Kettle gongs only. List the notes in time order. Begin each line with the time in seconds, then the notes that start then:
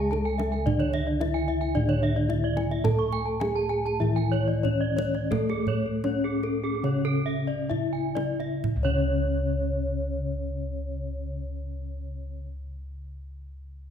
Already playing: C#2
0.12 D4
0.67 D4
1.21 D4
1.76 A2
2.31 D4
2.85 A4
3.42 D4
4.01 A2
4.65 D4
5.32 A4
6.05 D4
6.83 C#3
7.69 D4
8.76 C#2